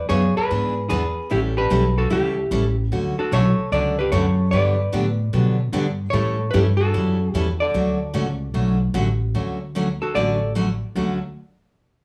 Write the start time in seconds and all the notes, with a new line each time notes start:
0.09 F#2 E3 B3 D4 G#4 C#5
0.37 G#4 B4, muted upright bass stroke
0.51 G#2 E3 B3 D4 G#4
0.89 E2 E3 B3 D4 G#4 B4
1.30 A1 E3 G3 C#4 E4 G4 A4
1.57 G4 B4
1.70 B1 E3 G3 C#4 E4 A4
1.98 F#4 A4
2.10 C#2 E3 G3 C#4 E4 G4 A4
2.51 A1 E3 G3 C#4 E4 A4
2.92 D2 D3 F#3 A3 C#4 F#4
3.18 F#4 A4, muted upright bass stroke
3.32 B1 D3 F#3 A3 C#4 F#4 A4 C#5
3.59 muted upright bass stroke
3.72 C#2 D3 F#3 A3 C#4 F#4 A4 D5
3.99 G4 B4
4.12 F#2 D3 F#3 A3 C#4 F#4 A4 C#5
4.51 G2 D3 F#3 B3 D4 G4 B4 D5
4.92 A2 D3 F#3 B3 D4 G4
5.33 B2 D3 F#3 B3 D4 G4
5.72 G2 D3 F#3 B3 D4 G4
6.10 A2 E3 G3 C#4 E4 A4 C#5
6.51 G2 E3 G3 C#4 E4 G4 A4 B4
6.77 F#4 A4
6.94 F#2 E3 G3 C#4 E4 A4
7.34 E2 E3 G3 C#4 E4 G4 A4
7.60 A4 D5
7.74 D2 D3 F#3 A3 C#4 F#4
8.14 C#2 D3 F#3 A3 C#4 F#4
8.54 B1 D3 F#3 A3 C#4 F#4
8.94 A1 D3 F#3 A3 C#4 F#4
9.34 D2 D3 F#3 A3 C#4 F#4
9.75 D3 F#3 A3 C#4 F#4
10.02 F#4 A4
10.15 A1 D3 F#3 A3 C#4 F#4 A4 D5
10.55 D3 F#3 A3 C#4 F#4
10.95 D2 D3 F#3 A3 C#4 F#4